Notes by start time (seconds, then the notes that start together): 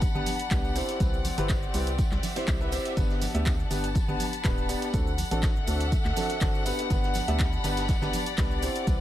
Already playing: G4 D5 F#5 A5 B5
0.01 kick, closed hi-hat, tambourine, cabasa
0.15 G1 B3 D4 G4 B4, cabasa
0.26 open hi-hat, tambourine, high conga, cabasa
0.39 closed hi-hat, tambourine, cabasa
0.51 C2 B3 D4 G4 B4, kick, snare, clap, closed hi-hat, tambourine, cabasa
0.64 tambourine, cabasa
0.76 C4 E4 G4 C5, open hi-hat, tambourine, cabasa
0.89 snare, closed hi-hat, tambourine, cabasa
1.00 C2 C4 E4 G4 B4, kick, closed hi-hat, tambourine, cabasa
1.13 tambourine, cabasa
1.25 open hi-hat, tambourine, high conga, cabasa
1.38 G1 C4 E4 G4 B4, closed hi-hat, tambourine, cabasa
1.49 E5, kick, snare, clap, closed hi-hat, tambourine, cabasa
1.63 tambourine, cabasa
1.74 C2 C4 E4 G4 B4, open hi-hat, tambourine, cabasa
1.87 closed hi-hat, tambourine, cabasa
1.98 kick, closed hi-hat, tambourine, cabasa
2.11 C2, snare, clap, cabasa
2.23 open hi-hat, tambourine, high conga, cabasa
2.36 C4 E4 G4 C5, closed hi-hat, tambourine, cabasa
2.47 C2 C4 E4 G4 C5, kick, snare, clap, closed hi-hat, tambourine, cabasa
2.61 C4 E4 G4 B4, tambourine, cabasa
2.72 C4 E4 G4 C5, open hi-hat, tambourine, cabasa
2.85 snare, closed hi-hat, tambourine, cabasa
2.97 G1 B3 D4 G4 B4 F#5, kick, closed hi-hat, tambourine, cabasa
3.10 snare, tambourine, cabasa
3.19 A5, snare, open hi-hat, tambourine, high conga, cabasa
3.34 D2 B3 D4 G4 E5, closed hi-hat, tambourine, cabasa
3.45 kick, snare, clap, closed hi-hat, tambourine, cabasa
3.60 cabasa
3.71 G1 B3 D4 G4 B4, snare, open hi-hat, tambourine, cabasa
3.84 B5, closed hi-hat, tambourine, cabasa
3.95 kick, closed hi-hat, tambourine, cabasa
4.08 G1 B3 D4 G4 B4, cabasa
4.20 open hi-hat, tambourine, high conga, cabasa
4.33 closed hi-hat, tambourine, cabasa
4.44 D1 B3 D4 G4 B4, kick, snare, clap, closed hi-hat, tambourine, cabasa
4.58 tambourine, cabasa
4.69 B3 D4 G4 D5, open hi-hat, tambourine, cabasa
4.82 snare, closed hi-hat, tambourine, cabasa
4.93 D2 C4 D4 F#4 A4, kick, closed hi-hat, tambourine, cabasa
5.04 F#5, tambourine, cabasa
5.16 A4, open hi-hat, tambourine, high conga, cabasa
5.31 A1 C4 D4 F#4 A4 E5, closed hi-hat, tambourine, cabasa
5.43 kick, snare, clap, closed hi-hat, tambourine, cabasa
5.56 cabasa
5.67 D2 C4 D4 F#4 A4, open hi-hat, tambourine, cabasa
5.80 closed hi-hat, tambourine, cabasa
5.92 kick, closed hi-hat, tambourine, cabasa
6.05 D2, snare, clap, cabasa
6.16 C4 D4 F#4 A4, open hi-hat, tambourine, high conga, cabasa
6.30 closed hi-hat, tambourine, cabasa
6.41 G1 C4 D4 F#4 A4, kick, snare, clap, closed hi-hat, tambourine, cabasa
6.55 tambourine, cabasa
6.65 B3 D4 G4 B4, open hi-hat, tambourine, cabasa
6.76 B5, snare, closed hi-hat, tambourine, cabasa
6.90 G1 B3 D4 G4 B4 D5, kick, closed hi-hat, tambourine, cabasa
6.94 A5
7.04 snare, tambourine, cabasa
7.14 snare, open hi-hat, tambourine, high conga, cabasa
7.28 D2 B3 D4 G4 E5, closed hi-hat, tambourine, cabasa
7.39 kick, snare, clap, closed hi-hat, tambourine, cabasa
7.53 cabasa
7.64 G1 B3 D4 G4 B4, snare, open hi-hat, tambourine, cabasa
7.77 snare, closed hi-hat, tambourine, cabasa
7.88 kick, snare, closed hi-hat, tambourine, cabasa
8.02 G1 B3 D4 G4 B4, snare, tambourine, cabasa
8.13 open hi-hat, tambourine, high conga, cabasa
8.26 closed hi-hat, tambourine, cabasa
8.38 C2 B3 D4 G4 B4, kick, snare, clap, closed hi-hat, tambourine, cabasa
8.51 tambourine, cabasa
8.62 C4 E4 G4 C5, open hi-hat, tambourine, cabasa
8.76 closed hi-hat, tambourine, cabasa
8.87 C2 C4 E4 G4 B4, kick, closed hi-hat, tambourine, cabasa